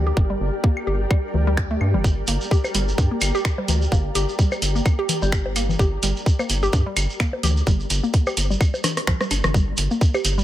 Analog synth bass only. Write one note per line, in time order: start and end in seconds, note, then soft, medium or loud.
0.00 0.12 D2 medium
0.17 0.35 G1 loud
0.40 0.50 G1 loud
0.87 1.06 G1 medium
1.34 1.77 D2 medium
1.81 1.96 G2 loud
1.94 2.02 G1 medium
2.04 2.23 G1 loud
2.28 2.38 G1 loud
2.75 2.93 G1 medium
2.98 3.08 G2 loud
3.21 3.31 G1 medium
3.68 3.87 D2 medium
3.92 4.10 G1 loud
4.15 4.25 G1 loud
4.62 4.81 G1 medium
5.22 5.75 G1 medium
5.79 5.98 G1 loud
6.03 6.13 G1 loud
6.50 6.68 G1 medium
6.73 6.83 G2 loud
6.96 7.06 G1 loud
7.43 7.62 D2 medium
7.67 7.85 G1 medium
7.90 8.00 G1 loud
8.37 8.56 G1 medium
9.07 9.17 C2 medium
9.31 9.41 G1 medium
9.44 9.52 G1 medium
9.54 9.73 G1 loud
9.78 9.88 G1 loud
10.25 10.43 G1 medium